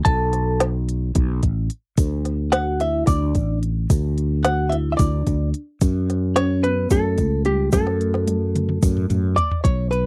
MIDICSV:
0, 0, Header, 1, 5, 480
1, 0, Start_track
1, 0, Tempo, 548446
1, 45, Time_signature, 7, 3, 24, 8
1, 8807, End_track
2, 0, Start_track
2, 0, Title_t, "Hollow-body jazz guitar"
2, 0, Program_c, 0, 26
2, 42, Note_on_c, 0, 81, 104
2, 550, Note_off_c, 0, 81, 0
2, 2205, Note_on_c, 0, 78, 92
2, 2454, Note_off_c, 0, 78, 0
2, 2457, Note_on_c, 0, 76, 86
2, 2676, Note_off_c, 0, 76, 0
2, 2687, Note_on_c, 0, 74, 73
2, 3134, Note_off_c, 0, 74, 0
2, 3891, Note_on_c, 0, 78, 99
2, 4108, Note_on_c, 0, 76, 86
2, 4136, Note_off_c, 0, 78, 0
2, 4159, Note_off_c, 0, 76, 0
2, 4308, Note_on_c, 0, 76, 56
2, 4346, Note_off_c, 0, 76, 0
2, 4349, Note_on_c, 0, 74, 71
2, 4803, Note_off_c, 0, 74, 0
2, 5565, Note_on_c, 0, 73, 101
2, 5787, Note_off_c, 0, 73, 0
2, 5807, Note_on_c, 0, 71, 90
2, 6049, Note_off_c, 0, 71, 0
2, 6053, Note_on_c, 0, 69, 89
2, 6523, Note_off_c, 0, 69, 0
2, 6526, Note_on_c, 0, 67, 80
2, 6758, Note_off_c, 0, 67, 0
2, 6762, Note_on_c, 0, 69, 87
2, 8166, Note_off_c, 0, 69, 0
2, 8193, Note_on_c, 0, 74, 101
2, 8431, Note_off_c, 0, 74, 0
2, 8435, Note_on_c, 0, 73, 89
2, 8661, Note_off_c, 0, 73, 0
2, 8671, Note_on_c, 0, 71, 84
2, 8807, Note_off_c, 0, 71, 0
2, 8807, End_track
3, 0, Start_track
3, 0, Title_t, "Vibraphone"
3, 0, Program_c, 1, 11
3, 47, Note_on_c, 1, 69, 87
3, 552, Note_off_c, 1, 69, 0
3, 2207, Note_on_c, 1, 66, 81
3, 2431, Note_off_c, 1, 66, 0
3, 2457, Note_on_c, 1, 64, 66
3, 2676, Note_off_c, 1, 64, 0
3, 2692, Note_on_c, 1, 62, 55
3, 3137, Note_off_c, 1, 62, 0
3, 3875, Note_on_c, 1, 66, 80
3, 4104, Note_off_c, 1, 66, 0
3, 4121, Note_on_c, 1, 64, 71
3, 4203, Note_off_c, 1, 64, 0
3, 4302, Note_on_c, 1, 64, 46
3, 4345, Note_on_c, 1, 62, 61
3, 4360, Note_off_c, 1, 64, 0
3, 4801, Note_off_c, 1, 62, 0
3, 5565, Note_on_c, 1, 61, 84
3, 5788, Note_off_c, 1, 61, 0
3, 5803, Note_on_c, 1, 59, 79
3, 6026, Note_off_c, 1, 59, 0
3, 6046, Note_on_c, 1, 57, 69
3, 6491, Note_off_c, 1, 57, 0
3, 6523, Note_on_c, 1, 55, 72
3, 6746, Note_off_c, 1, 55, 0
3, 6764, Note_on_c, 1, 57, 66
3, 8167, Note_off_c, 1, 57, 0
3, 8807, End_track
4, 0, Start_track
4, 0, Title_t, "Fretless electric bass"
4, 0, Program_c, 2, 35
4, 49, Note_on_c, 2, 35, 89
4, 974, Note_off_c, 2, 35, 0
4, 1007, Note_on_c, 2, 35, 83
4, 1228, Note_off_c, 2, 35, 0
4, 1248, Note_on_c, 2, 33, 78
4, 1469, Note_off_c, 2, 33, 0
4, 1730, Note_on_c, 2, 38, 86
4, 2654, Note_off_c, 2, 38, 0
4, 2690, Note_on_c, 2, 38, 92
4, 2909, Note_off_c, 2, 38, 0
4, 2932, Note_on_c, 2, 33, 76
4, 3375, Note_off_c, 2, 33, 0
4, 3412, Note_on_c, 2, 38, 88
4, 4334, Note_off_c, 2, 38, 0
4, 4370, Note_on_c, 2, 38, 91
4, 4589, Note_off_c, 2, 38, 0
4, 4607, Note_on_c, 2, 38, 77
4, 4827, Note_off_c, 2, 38, 0
4, 5089, Note_on_c, 2, 42, 88
4, 6010, Note_off_c, 2, 42, 0
4, 6044, Note_on_c, 2, 42, 89
4, 6264, Note_off_c, 2, 42, 0
4, 6281, Note_on_c, 2, 37, 81
4, 6726, Note_off_c, 2, 37, 0
4, 6763, Note_on_c, 2, 42, 92
4, 7687, Note_off_c, 2, 42, 0
4, 7724, Note_on_c, 2, 42, 87
4, 7943, Note_off_c, 2, 42, 0
4, 7961, Note_on_c, 2, 42, 78
4, 8182, Note_off_c, 2, 42, 0
4, 8441, Note_on_c, 2, 35, 79
4, 8807, Note_off_c, 2, 35, 0
4, 8807, End_track
5, 0, Start_track
5, 0, Title_t, "Drums"
5, 47, Note_on_c, 9, 42, 79
5, 48, Note_on_c, 9, 36, 106
5, 134, Note_off_c, 9, 42, 0
5, 136, Note_off_c, 9, 36, 0
5, 288, Note_on_c, 9, 38, 31
5, 288, Note_on_c, 9, 42, 59
5, 376, Note_off_c, 9, 38, 0
5, 376, Note_off_c, 9, 42, 0
5, 528, Note_on_c, 9, 38, 108
5, 528, Note_on_c, 9, 42, 85
5, 616, Note_off_c, 9, 38, 0
5, 616, Note_off_c, 9, 42, 0
5, 776, Note_on_c, 9, 42, 64
5, 863, Note_off_c, 9, 42, 0
5, 1007, Note_on_c, 9, 42, 81
5, 1011, Note_on_c, 9, 36, 93
5, 1095, Note_off_c, 9, 42, 0
5, 1099, Note_off_c, 9, 36, 0
5, 1249, Note_on_c, 9, 42, 65
5, 1251, Note_on_c, 9, 36, 66
5, 1336, Note_off_c, 9, 42, 0
5, 1339, Note_off_c, 9, 36, 0
5, 1487, Note_on_c, 9, 42, 64
5, 1575, Note_off_c, 9, 42, 0
5, 1728, Note_on_c, 9, 42, 83
5, 1731, Note_on_c, 9, 36, 97
5, 1733, Note_on_c, 9, 82, 59
5, 1816, Note_off_c, 9, 42, 0
5, 1818, Note_off_c, 9, 36, 0
5, 1821, Note_off_c, 9, 82, 0
5, 1971, Note_on_c, 9, 38, 33
5, 1971, Note_on_c, 9, 42, 60
5, 2059, Note_off_c, 9, 38, 0
5, 2059, Note_off_c, 9, 42, 0
5, 2210, Note_on_c, 9, 38, 112
5, 2210, Note_on_c, 9, 42, 82
5, 2297, Note_off_c, 9, 38, 0
5, 2297, Note_off_c, 9, 42, 0
5, 2452, Note_on_c, 9, 38, 32
5, 2452, Note_on_c, 9, 42, 55
5, 2539, Note_off_c, 9, 38, 0
5, 2539, Note_off_c, 9, 42, 0
5, 2687, Note_on_c, 9, 38, 32
5, 2687, Note_on_c, 9, 42, 74
5, 2691, Note_on_c, 9, 36, 102
5, 2691, Note_on_c, 9, 82, 52
5, 2775, Note_off_c, 9, 38, 0
5, 2775, Note_off_c, 9, 42, 0
5, 2778, Note_off_c, 9, 36, 0
5, 2779, Note_off_c, 9, 82, 0
5, 2929, Note_on_c, 9, 42, 57
5, 2932, Note_on_c, 9, 36, 64
5, 2940, Note_on_c, 9, 82, 17
5, 3017, Note_off_c, 9, 42, 0
5, 3020, Note_off_c, 9, 36, 0
5, 3027, Note_off_c, 9, 82, 0
5, 3175, Note_on_c, 9, 42, 52
5, 3262, Note_off_c, 9, 42, 0
5, 3413, Note_on_c, 9, 36, 107
5, 3413, Note_on_c, 9, 42, 75
5, 3416, Note_on_c, 9, 82, 59
5, 3500, Note_off_c, 9, 36, 0
5, 3500, Note_off_c, 9, 42, 0
5, 3504, Note_off_c, 9, 82, 0
5, 3656, Note_on_c, 9, 42, 55
5, 3743, Note_off_c, 9, 42, 0
5, 3890, Note_on_c, 9, 38, 108
5, 3890, Note_on_c, 9, 42, 81
5, 3977, Note_off_c, 9, 38, 0
5, 3977, Note_off_c, 9, 42, 0
5, 4132, Note_on_c, 9, 38, 31
5, 4132, Note_on_c, 9, 42, 60
5, 4219, Note_off_c, 9, 38, 0
5, 4219, Note_off_c, 9, 42, 0
5, 4366, Note_on_c, 9, 42, 80
5, 4370, Note_on_c, 9, 36, 102
5, 4374, Note_on_c, 9, 82, 53
5, 4454, Note_off_c, 9, 42, 0
5, 4458, Note_off_c, 9, 36, 0
5, 4462, Note_off_c, 9, 82, 0
5, 4609, Note_on_c, 9, 42, 60
5, 4610, Note_on_c, 9, 36, 67
5, 4615, Note_on_c, 9, 82, 19
5, 4696, Note_off_c, 9, 42, 0
5, 4698, Note_off_c, 9, 36, 0
5, 4702, Note_off_c, 9, 82, 0
5, 4849, Note_on_c, 9, 42, 61
5, 4936, Note_off_c, 9, 42, 0
5, 5087, Note_on_c, 9, 42, 82
5, 5088, Note_on_c, 9, 82, 58
5, 5089, Note_on_c, 9, 36, 99
5, 5174, Note_off_c, 9, 42, 0
5, 5176, Note_off_c, 9, 82, 0
5, 5177, Note_off_c, 9, 36, 0
5, 5336, Note_on_c, 9, 38, 35
5, 5336, Note_on_c, 9, 42, 62
5, 5424, Note_off_c, 9, 38, 0
5, 5424, Note_off_c, 9, 42, 0
5, 5567, Note_on_c, 9, 38, 107
5, 5567, Note_on_c, 9, 42, 87
5, 5655, Note_off_c, 9, 38, 0
5, 5655, Note_off_c, 9, 42, 0
5, 5811, Note_on_c, 9, 42, 59
5, 5899, Note_off_c, 9, 42, 0
5, 6043, Note_on_c, 9, 82, 60
5, 6044, Note_on_c, 9, 42, 81
5, 6046, Note_on_c, 9, 36, 99
5, 6131, Note_off_c, 9, 42, 0
5, 6131, Note_off_c, 9, 82, 0
5, 6134, Note_off_c, 9, 36, 0
5, 6281, Note_on_c, 9, 42, 61
5, 6281, Note_on_c, 9, 82, 20
5, 6285, Note_on_c, 9, 36, 69
5, 6368, Note_off_c, 9, 82, 0
5, 6369, Note_off_c, 9, 42, 0
5, 6372, Note_off_c, 9, 36, 0
5, 6519, Note_on_c, 9, 42, 55
5, 6607, Note_off_c, 9, 42, 0
5, 6758, Note_on_c, 9, 82, 70
5, 6763, Note_on_c, 9, 36, 108
5, 6763, Note_on_c, 9, 38, 57
5, 6763, Note_on_c, 9, 42, 80
5, 6845, Note_off_c, 9, 82, 0
5, 6851, Note_off_c, 9, 36, 0
5, 6851, Note_off_c, 9, 38, 0
5, 6851, Note_off_c, 9, 42, 0
5, 6884, Note_on_c, 9, 38, 55
5, 6972, Note_off_c, 9, 38, 0
5, 7009, Note_on_c, 9, 42, 58
5, 7097, Note_off_c, 9, 42, 0
5, 7124, Note_on_c, 9, 38, 57
5, 7212, Note_off_c, 9, 38, 0
5, 7242, Note_on_c, 9, 42, 80
5, 7242, Note_on_c, 9, 48, 72
5, 7329, Note_off_c, 9, 42, 0
5, 7329, Note_off_c, 9, 48, 0
5, 7487, Note_on_c, 9, 42, 51
5, 7487, Note_on_c, 9, 47, 73
5, 7575, Note_off_c, 9, 42, 0
5, 7575, Note_off_c, 9, 47, 0
5, 7603, Note_on_c, 9, 47, 65
5, 7691, Note_off_c, 9, 47, 0
5, 7724, Note_on_c, 9, 82, 63
5, 7725, Note_on_c, 9, 36, 104
5, 7725, Note_on_c, 9, 42, 80
5, 7811, Note_off_c, 9, 82, 0
5, 7812, Note_off_c, 9, 42, 0
5, 7813, Note_off_c, 9, 36, 0
5, 7848, Note_on_c, 9, 45, 78
5, 7936, Note_off_c, 9, 45, 0
5, 7966, Note_on_c, 9, 42, 58
5, 7966, Note_on_c, 9, 45, 89
5, 7966, Note_on_c, 9, 82, 19
5, 8053, Note_off_c, 9, 42, 0
5, 8053, Note_off_c, 9, 45, 0
5, 8053, Note_off_c, 9, 82, 0
5, 8205, Note_on_c, 9, 42, 57
5, 8205, Note_on_c, 9, 43, 88
5, 8293, Note_off_c, 9, 42, 0
5, 8293, Note_off_c, 9, 43, 0
5, 8325, Note_on_c, 9, 43, 86
5, 8413, Note_off_c, 9, 43, 0
5, 8443, Note_on_c, 9, 36, 94
5, 8444, Note_on_c, 9, 42, 76
5, 8531, Note_off_c, 9, 36, 0
5, 8531, Note_off_c, 9, 42, 0
5, 8687, Note_on_c, 9, 42, 56
5, 8774, Note_off_c, 9, 42, 0
5, 8807, End_track
0, 0, End_of_file